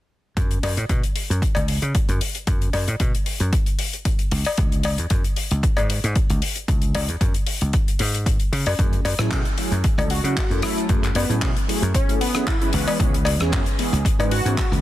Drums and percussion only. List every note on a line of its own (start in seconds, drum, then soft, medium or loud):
0.37 kick loud
0.37 closed hi-hat medium
0.51 closed hi-hat soft
0.63 open hi-hat loud
0.63 cowbell medium
0.77 closed hi-hat soft
0.89 kick medium
0.89 closed hi-hat medium
1.04 closed hi-hat medium
1.16 open hi-hat medium
1.31 closed hi-hat medium
1.42 kick loud
1.42 closed hi-hat medium
1.55 closed hi-hat medium
1.55 cowbell medium
1.68 open hi-hat medium
1.82 closed hi-hat medium
1.95 kick loud
1.95 closed hi-hat medium
2.09 closed hi-hat medium
2.21 open hi-hat medium
2.35 closed hi-hat soft
2.47 kick loud
2.47 closed hi-hat medium
2.62 closed hi-hat soft
2.73 open hi-hat loud
2.73 cowbell medium
2.88 closed hi-hat medium
3.00 kick medium
3.00 closed hi-hat medium
3.15 closed hi-hat medium
3.26 open hi-hat medium
3.40 closed hi-hat medium
3.53 kick loud
3.53 closed hi-hat medium
3.66 closed hi-hat medium
3.79 open hi-hat loud
3.93 closed hi-hat soft
4.05 kick loud
4.05 closed hi-hat loud
4.19 closed hi-hat soft
4.31 open hi-hat medium
4.45 open hi-hat medium
4.45 cowbell medium
4.57 kick loud
4.57 closed hi-hat medium
4.72 closed hi-hat soft
4.83 open hi-hat loud
4.83 cowbell loud
4.98 closed hi-hat medium
5.10 kick loud
5.10 closed hi-hat medium
5.24 closed hi-hat soft
5.36 open hi-hat loud
5.51 closed hi-hat soft
5.63 kick loud
5.63 closed hi-hat medium
5.77 closed hi-hat soft
5.77 cowbell medium
5.90 open hi-hat medium
6.04 closed hi-hat medium
6.16 kick loud
6.16 closed hi-hat medium
6.30 closed hi-hat medium
6.42 open hi-hat loud
6.56 closed hi-hat medium
6.68 kick loud
6.68 closed hi-hat medium
6.82 closed hi-hat soft
6.95 open hi-hat loud
6.95 cowbell medium
7.08 closed hi-hat medium
7.21 kick loud
7.21 closed hi-hat medium
7.34 closed hi-hat medium
7.47 open hi-hat loud
7.61 closed hi-hat medium
7.73 kick loud
7.73 closed hi-hat medium
7.88 closed hi-hat medium
7.99 open hi-hat loud
8.14 closed hi-hat medium
8.26 kick loud
8.26 closed hi-hat medium
8.40 closed hi-hat soft
8.53 open hi-hat medium
8.66 open hi-hat medium
8.66 cowbell medium
8.79 kick loud
8.79 closed hi-hat medium
8.93 closed hi-hat soft
9.05 open hi-hat loud
9.05 cowbell medium
9.19 cross-stick medium
9.19 closed hi-hat soft
9.31 kick medium
9.31 clap loud
9.31 closed hi-hat medium
9.45 closed hi-hat medium
9.58 open hi-hat loud
9.72 closed hi-hat medium
9.84 kick loud
9.84 closed hi-hat medium
9.99 closed hi-hat medium
9.99 cowbell medium
10.10 open hi-hat medium
10.25 closed hi-hat medium
10.37 kick loud
10.37 clap loud
10.37 closed hi-hat medium
10.51 closed hi-hat soft
10.62 cross-stick medium
10.62 open hi-hat loud
10.78 closed hi-hat medium
10.89 kick loud
10.89 closed hi-hat medium
11.04 clap soft
11.04 closed hi-hat soft
11.15 open hi-hat loud
11.15 cowbell medium
11.30 closed hi-hat soft
11.41 kick medium
11.41 clap loud
11.41 closed hi-hat medium
11.56 closed hi-hat medium
11.69 open hi-hat loud
11.83 closed hi-hat medium
11.94 kick loud
11.94 closed hi-hat loud
12.09 closed hi-hat medium
12.21 open hi-hat medium
12.35 cross-stick medium
12.35 closed hi-hat medium
12.47 kick loud
12.47 clap loud
12.47 closed hi-hat medium
12.61 closed hi-hat medium
12.73 open hi-hat loud
12.87 open hi-hat medium
12.87 cowbell medium
13.00 kick loud
13.00 closed hi-hat loud
13.14 closed hi-hat medium
13.25 open hi-hat loud
13.25 cowbell medium
13.40 cross-stick medium
13.40 closed hi-hat soft
13.52 kick medium
13.52 clap loud
13.52 closed hi-hat medium
13.66 closed hi-hat medium
13.79 open hi-hat medium
13.94 closed hi-hat medium
14.05 kick loud
14.05 closed hi-hat medium
14.20 closed hi-hat soft
14.20 cowbell medium
14.31 open hi-hat loud
14.46 closed hi-hat medium
14.58 kick loud
14.58 clap loud
14.58 closed hi-hat medium
14.73 closed hi-hat medium